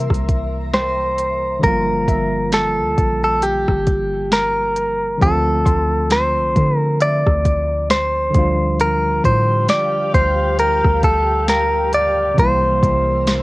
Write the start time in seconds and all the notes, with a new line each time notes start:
Already playing: C3 E3 G3 A#3 E4 A#4 C5 E5 A#5
0.10 C2, kick, cross-stick, closed hi-hat
0.29 kick, closed hi-hat
0.74 C5 G5, snare, closed hi-hat
1.18 closed hi-hat
1.59 D3 F3 G3, kick
1.63 G1 A#3 F4 A#4, closed hi-hat
2.08 G1 E5, kick, closed hi-hat
2.52 A4, snare, closed hi-hat
2.79 D2
2.98 A#1, kick, closed hi-hat
3.24 A4
3.42 G4, closed hi-hat
3.68 G1, kick, cross-stick
3.87 kick, closed hi-hat
4.32 A#4, snare, closed hi-hat
4.76 closed hi-hat
5.18 D2 D3 F3, kick, closed hi-hat
5.22 A3 C4 A4
5.26 F4
5.65 D2 C6, kick, closed hi-hat
6.10 C5, snare, closed hi-hat
6.37 C2
6.56 D3, kick, closed hi-hat
6.77 A#4
7.00 D5 E5, closed hi-hat
7.27 D2, kick, cross-stick
7.45 kick, closed hi-hat
7.90 C5, snare, closed hi-hat
8.31 D3 F3
8.35 D2 G3 D4, kick, closed hi-hat
8.39 F4
8.79 G4 A#4 F5 G5, closed hi-hat
9.24 A2 C5, kick, closed hi-hat
9.69 D5, snare, closed hi-hat
10.14 D2 C5, kick, closed hi-hat
10.59 A#4, closed hi-hat
10.85 D2, kick, cross-stick
11.03 D2 A4, kick, closed hi-hat
11.48 A#4, snare, closed hi-hat
11.93 D5, closed hi-hat
12.34 C3 E3 A#4 E5 C6, kick
12.38 C2 G3 A#3 C5 A5, closed hi-hat
12.42 E4
12.83 C2, kick, closed hi-hat
13.27 C6, snare, closed hi-hat